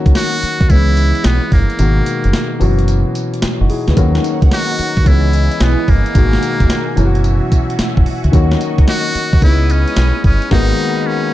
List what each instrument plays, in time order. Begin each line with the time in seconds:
Already playing: grand piano D#3 F#3 A#3 C#4 F#4
0.06 fingered electric bass C#2, kick, closed hi-hat
0.15 muted trumpet F#4, snare, closed hi-hat, tambourine
0.43 muted fingered electric bass stroke, closed hi-hat, tambourine
0.61 fingered electric bass D#2, kick, closed hi-hat
0.69 fingered electric bass C#2, grand piano E3 G#3 B3 C#4 E4, muted trumpet E4, kick, closed hi-hat, tambourine
0.97 closed hi-hat, tambourine
1.15 closed hi-hat
1.24 fingered electric bass B1, muted trumpet B3, snare, closed hi-hat, tambourine
1.52 fingered electric bass G1, muted trumpet A#3, kick, open hi-hat
1.70 closed hi-hat
1.79 fingered electric bass G#1, grand piano B2 D#3 G#3 A#3 F#4, closed hi-hat, tambourine
2.06 closed hi-hat, tambourine
2.24 fingered electric bass F#1, closed hi-hat
2.33 snare, closed hi-hat, tambourine
2.59 fingered electric bass F#1, grand piano B2 E3 F#3 C#4 F#4, open hi-hat, tambourine
2.79 closed hi-hat
2.88 closed hi-hat, tambourine
3.15 closed hi-hat, tambourine
3.34 closed hi-hat
3.42 muted fingered electric bass stroke, snare, closed hi-hat, tambourine
3.61 fingered electric bass F#1, grand piano D#4 F#4
3.70 grand piano E4 G#4, open hi-hat
3.88 fingered electric bass D2, grand piano G#4 B4, snare, closed hi-hat
3.96 fingered electric bass D#2, grand piano D#3 F#3 A#3 C#4 F#4, analog synth pad D#4 C#5 F#5, kick, closed hi-hat, tambourine
4.15 snare
4.24 closed hi-hat, tambourine
4.42 fingered electric bass C#2, kick, closed hi-hat
4.51 muted trumpet F#4, snare, closed hi-hat, tambourine
4.79 muted fingered electric bass stroke, closed hi-hat, tambourine
4.97 fingered electric bass D#2, kick, closed hi-hat
5.05 fingered electric bass C#2, grand piano E3 G#3 B3 C#4 E4, analog synth pad E4 D#5 G#5, muted trumpet E4, kick, closed hi-hat, tambourine
5.33 closed hi-hat, tambourine
5.52 closed hi-hat
5.60 fingered electric bass B1, muted trumpet B3, snare, closed hi-hat, tambourine
5.88 fingered electric bass G1, muted trumpet A#3, kick, open hi-hat
6.06 closed hi-hat
6.15 fingered electric bass G#1, grand piano B2 D#3 G#3 A#3 F#4, analog synth pad A#4 F#5, kick, closed hi-hat, tambourine
6.33 snare
6.43 closed hi-hat, tambourine
6.60 fingered electric bass F#1, kick, closed hi-hat
6.70 snare, closed hi-hat, tambourine
6.96 fingered electric bass F#1, grand piano B2 E3 F#3 C#4 E4, analog synth pad F#4 E5, closed hi-hat, tambourine
7.05 grand piano F#4
7.15 closed hi-hat
7.24 closed hi-hat, tambourine
7.52 kick, closed hi-hat, tambourine
7.70 closed hi-hat
7.79 muted fingered electric bass stroke, snare, closed hi-hat, tambourine
7.97 fingered electric bass F#1, kick
8.06 open hi-hat
8.24 fingered electric bass D2, closed hi-hat
8.32 fingered electric bass D#2, grand piano D#3 F#3 A#3 C#4 F#4, analog synth pad D#5 C#6, kick, closed hi-hat, tambourine
8.51 snare
8.61 closed hi-hat, tambourine
8.78 fingered electric bass C#2, kick, closed hi-hat
8.87 muted trumpet F#4, snare, closed hi-hat, tambourine
9.15 muted fingered electric bass stroke, closed hi-hat, tambourine
9.33 fingered electric bass D#2, kick, closed hi-hat
9.41 fingered electric bass C#2, grand piano G#3 B3 C#4 D#4 E4, muted trumpet E4, analog synth pad B4 D#5 D#6, kick, closed hi-hat, tambourine
9.70 muted trumpet C#4, closed hi-hat, tambourine
9.88 closed hi-hat
9.96 fingered electric bass B1, snare, closed hi-hat, tambourine
10.24 fingered electric bass G1, muted trumpet C#4, kick, open hi-hat
10.42 closed hi-hat
10.51 fingered electric bass G#1, grand piano D#3 G#3 A#3 B3 F#4, analog synth pad A#3 F#5 B5, muted trumpet D#4, kick, snare, crash
11.07 muted trumpet C#4